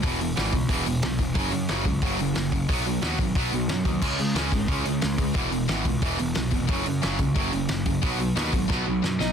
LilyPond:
<<
  \new Staff \with { instrumentName = "Lead electric guitar" } { \time 4/4 \key e \major \tempo 4 = 180 r1 | r1 | r1 | r1 |
r1 | r1 | r2. r8 <dis' dis''>8 | }
  \new Staff \with { instrumentName = "Distorted electric guitar" } { \clef bass \time 4/4 \key e \major <e, b, e>8 <e, b,>8 <e, b, e>8 <e, b,>8 <e, b, e>8 <e, b,>8 <e, b,>8 <e, b,>8 | <fis, cis fis>8 <fis, cis>8 <fis, cis fis>8 <fis, cis>8 <fis, cis fis>8 <fis, cis>8 <fis, cis>8 <fis, cis>8 | <b, fis b>8 <b, fis>8 <b, fis b>8 <b, fis>8 <b, fis b>8 <b, fis>8 <b, fis>8 <b, fis>8 | <cis gis cis'>8 <cis gis>8 <cis gis cis'>8 <cis gis>8 <cis gis cis'>8 <cis gis>8 <cis gis>8 <cis gis>8 |
<e, b, e>8 <e, b,>8 <e, b, e>8 <e, b,>8 <e, b, e>8 <e, b,>8 <e, b,>8 <e, b,>8 | <fis, cis fis>8 <fis, cis>8 <fis, cis fis>8 <fis, cis>8 <fis, cis fis>8 <fis, cis>8 <fis, cis>8 <fis, cis>8 | <b, fis b>8 <b, fis>8 <b, fis b>8 <b, fis>8 <b, fis b>8 <b, fis>8 <b, fis>8 <b, fis>8 | }
  \new Staff \with { instrumentName = "Distorted electric guitar" } { \clef bass \time 4/4 \key e \major <e, b, e>8 <e, b,>8 <e, b, e>8 <e, b,>8 <e, b, e>8 <e, b,>8 <e, b,>8 <e, b,>8 | <fis, cis fis>8 <fis, cis>8 <fis, cis fis>8 <fis, cis>8 <fis, cis fis>8 <fis, cis>8 <fis, cis>8 <fis, cis>8 | <b, fis b>8 <b, fis>8 <b, fis b>8 <b, fis>8 <b, fis b>8 <b, fis>8 <b, fis>8 <b, fis>8 | <cis gis cis'>8 <cis gis>8 <cis gis cis'>8 <cis gis>8 <cis gis cis'>8 <cis gis>8 <cis gis>8 <cis gis>8 |
<e, b, e>8 <e, b,>8 <e, b, e>8 <e, b,>8 <e, b, e>8 <e, b,>8 <e, b,>8 <e, b,>8 | <fis, cis fis>8 <fis, cis>8 <fis, cis fis>8 <fis, cis>8 <fis, cis fis>8 <fis, cis>8 <fis, cis>8 <fis, cis>8 | <b, fis b>8 <b, fis>8 <b, fis b>8 <b, fis>8 <b, fis b>8 <b, fis>8 <b, fis>8 <b, fis>8 | }
  \new Staff \with { instrumentName = "Picked electric bass" } { \clef bass \time 4/4 \key e \major e,,4 gis,,8 cis,8 e,,8 e,,8 b,,8 e,,8 | fis,,8 fis,8 fis,,8 cis,8 fis,,8 fis,,8 fis,,4 | b,,4 dis,8 gis,,8 b,,8 b,,8 fis,8 dis,8 | cis,8 cis8 cis,8 gis,,8 cis,8 cis,8 cis,4 |
e,,4 gis,,8 cis,8 e,,8 e,,8 b,,8 f,,8 | fis,,8 fis,8 fis,,8 cis,8 fis,,8 fis,,8 fis,,4 | b,,4 dis,8 gis,,8 b,,8 b,,8 fis,8 b,,8 | }
  \new DrumStaff \with { instrumentName = "Drums" } \drummode { \time 4/4 <hho bd>8 hho8 <hho sn>8 <hho bd>8 <hho bd>8 hho8 <hho sn>8 <hho bd>8 | <hho bd>8 hho8 <hho sn>8 <hho bd>8 <hho bd>8 hho8 <hho sn>8 <hho bd>8 | <hho bd>8 hho8 <hho sn>8 <hho bd>8 <hho bd>8 hho8 <hho sn>8 <hho bd>8 | <cymc bd>8 hho8 <hho sn>8 <hho bd>8 <hho bd>8 hho8 <hho sn>8 <hho bd>8 |
<hho bd>8 hho8 <hho sn>8 <hho bd>8 <hho bd>8 hho8 <hho sn>8 <hho bd>8 | <hho bd>8 hho8 <hho sn>8 <hho bd>8 <hho bd>8 hho8 <hho sn>8 <hho bd>8 | <hho bd>8 hho8 <hho sn>8 <hho bd>8 <bd sn>4 sn8 sn8 | }
>>